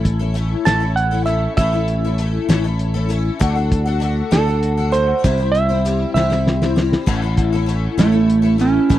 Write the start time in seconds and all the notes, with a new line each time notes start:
Already playing: A1 A3 C#4 E4 A4
0.05 kick, closed hi-hat
0.19 A3 C#4 E4 A4
0.34 A3 C#4 E4 A4, closed hi-hat
0.65 A1 A2 E3 A3 C#4 E4 A4 A5, snare, closed hi-hat
0.80 A3 C#4 E4 A4
0.96 F#5, closed hi-hat
1.11 A3 C#4 E4 A4
1.26 A3 C#4 E4 A4 E5, closed hi-hat
1.57 A1 A2 E3 A3 C#4 E4 A4 E5, kick, closed hi-hat
1.73 A3 C#4 E4 A4
1.88 closed hi-hat
2.04 A3 C#4 E4 A4
2.18 A3 C#4 E4 A4, closed hi-hat
2.49 A1 A2 E3 A3 C#4 E4 A4, snare, closed hi-hat
2.64 A3 C#4 E4 A4
2.79 closed hi-hat
2.94 A3 C#4 E4 A4
3.09 A3 C#4 E4 A4, closed hi-hat
3.39 D2 D3 A3 D4 F#4 A4, kick, closed hi-hat
3.55 D4 F#4 A4
3.72 kick, closed hi-hat
3.86 D4 F#4 A4
4.00 A3 D4 F#4 A4, closed hi-hat
4.31 D2 D3 A3 D4 F#4 A4, snare, closed hi-hat
4.47 D4 F#4 A4
4.63 closed hi-hat
4.77 D4 F#4 A4
4.92 A3 D4 F#4 A4 C5, closed hi-hat
5.24 C2 C3 E3 G3 C4 E4 C5, kick, closed hi-hat
5.38 G3 C4 E4 C5
5.52 E5, closed hi-hat
5.69 G3 C4 E4 C5
5.85 G3 C4 E4 C5, closed hi-hat
6.14 C2 C3 E3 G3 C4 E4 C5 E5, snare
6.30 G3 C4 E4 C5, snare
6.47 snare
6.62 G3 C4 E4 C5, snare
6.76 G3 C4 E4 C5, snare
6.93 snare
7.06 A1 A2 E3 A3 C#4 E4 A4, kick, crash
7.22 A3 C#4 E4 A4
7.37 kick, closed hi-hat
7.52 A3 C#4 E4 A4
7.66 A3 C#4 E4 A4, closed hi-hat
7.98 A1 A2 E3 A3 C#4 E4 A4, snare, closed hi-hat
8.12 A3 C#4 E4 A4
8.30 closed hi-hat
8.42 A3 C#4 E4 A4
8.58 A3 C#4 E4 A4, closed hi-hat
8.90 A1 A2 E3 A3 C#4 E4 A4, kick, closed hi-hat